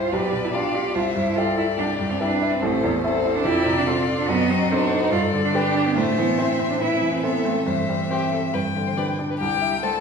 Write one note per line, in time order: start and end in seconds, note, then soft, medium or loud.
0.00 0.15 C2 soft
0.00 0.15 G2 soft
0.00 0.14 E4 soft
0.00 0.15 F4 medium
0.00 0.14 G4 soft
0.00 0.13 C5 soft
0.00 0.15 C5 soft
0.12 0.93 B1 soft
0.12 0.43 G4 medium
0.12 0.55 B4 soft
0.12 0.55 D5 soft
0.33 0.66 B2 soft
0.44 0.48 E4 medium
0.53 0.76 D4 medium
0.53 0.73 F4 soft
0.53 0.73 G4 soft
0.53 0.96 D5 soft
0.53 0.73 D5 soft
0.53 0.95 F5 soft
0.74 0.95 F4 soft
0.74 0.94 G4 medium
0.95 1.76 C2 soft
0.95 1.03 F4 medium
0.95 1.38 C5 soft
0.95 1.39 E5 soft
1.16 1.49 G2 soft
1.16 1.37 E4 medium
1.36 1.56 E4 soft
1.36 1.57 F4 medium
1.36 1.56 G4 soft
1.36 1.79 A4 soft
1.36 2.62 D5 soft
1.36 1.56 E5 soft
1.57 1.65 E4 medium
1.57 1.91 E4 soft
1.77 2.59 C2 soft
1.77 1.86 D4 medium
1.77 2.21 G4 soft
1.99 2.33 G2 soft
2.09 2.13 C4 medium
2.20 2.54 D4 medium
2.20 2.39 E4 soft
2.20 2.39 G4 soft
2.20 2.63 B4 soft
2.20 2.40 E5 soft
2.42 2.62 E4 soft
2.52 2.65 C4 medium
2.62 3.43 A1 medium
2.62 2.84 A3 medium
2.62 3.03 A4 soft
2.62 3.03 C5 soft
2.84 3.17 E2 soft
2.84 2.92 B3 medium
3.04 3.37 C4 medium
3.04 3.22 E4 soft
3.04 3.44 A4 medium
3.04 3.23 A4 soft
3.04 3.47 C5 soft
3.04 3.23 E5 soft
3.25 3.45 E4 soft
3.36 3.47 D4 medium
3.45 4.26 F2 medium
3.45 3.77 E4 medium
3.45 3.88 G4 medium
3.45 4.31 D5 medium
3.66 3.99 C3 soft
3.77 3.81 D4 medium
3.86 3.95 C4 medium
3.86 4.29 F4 medium
3.86 4.06 F4 soft
3.86 4.06 A4 soft
3.86 4.06 D5 soft
4.07 4.28 F4 soft
4.18 4.30 D4 medium
4.28 5.10 F#2 medium
4.28 4.51 B3 loud
4.28 4.69 F#4 medium
4.28 4.73 D#5 medium
4.50 4.83 F#3 medium
4.50 4.70 C4 medium
4.70 5.01 D4 medium
4.70 4.89 D#4 soft
4.70 5.13 F#4 medium
4.70 4.90 A4 soft
4.70 5.14 C5 soft
4.70 4.90 C5 soft
4.92 5.12 D#4 soft
5.02 5.11 D#4 medium
5.11 5.93 G2 medium
5.11 5.20 F4 medium
5.11 5.56 A4 medium
5.11 5.96 D5 soft
5.33 5.67 D3 soft
5.44 5.54 D4 medium
5.54 5.73 D4 soft
5.54 5.87 D4 medium
5.54 5.95 G4 medium
5.54 5.73 G4 soft
5.54 5.74 B4 soft
5.75 5.96 D4 soft
5.86 5.99 B3 medium
5.96 6.78 A2 medium
5.96 6.21 A3 medium
5.96 6.82 C5 medium
5.96 6.79 E5 soft
6.17 6.51 E3 soft
6.17 6.41 B3 medium
6.38 6.57 C4 soft
6.38 6.72 C4 medium
6.38 6.57 E4 soft
6.38 6.58 C5 soft
6.59 6.93 C4 soft
6.70 6.81 D4 medium
6.80 7.64 A2 soft
6.80 7.12 E4 medium
6.80 7.24 B4 soft
6.80 7.23 E5 soft
7.02 7.36 E3 soft
7.13 7.25 C4 medium
7.23 7.47 B3 medium
7.23 7.43 C4 soft
7.23 7.43 E4 soft
7.23 7.68 A4 soft
7.23 7.43 C5 soft
7.23 7.66 E5 soft
7.45 7.67 A3 medium
7.45 7.67 C4 soft
7.66 8.52 G2 soft
7.66 8.96 E3 medium
7.66 8.06 C5 soft
7.66 8.56 E5 soft
7.89 8.24 G3 soft
8.10 8.30 C4 soft
8.10 8.31 G4 soft
8.10 8.30 G4 soft
8.10 8.31 C5 soft
8.32 8.54 C4 soft
8.32 8.40 A4 soft
8.54 9.38 G2 soft
8.54 8.62 B4 medium
8.54 9.20 G5 soft
8.76 9.11 D3 soft
8.87 8.91 C5 soft
8.97 9.17 D4 soft
8.97 9.17 G4 soft
8.97 9.18 B4 soft
8.97 9.05 D5 soft
9.19 9.41 D4 soft
9.30 9.39 B4 soft
9.39 10.00 C2 soft
9.39 9.84 G3 medium
9.39 9.79 G4 medium
9.39 9.85 G5 medium
9.62 9.96 E4 soft
9.82 10.00 A3 soft
9.82 10.00 A4 medium
9.82 10.00 C5 soft
9.82 10.00 A5 medium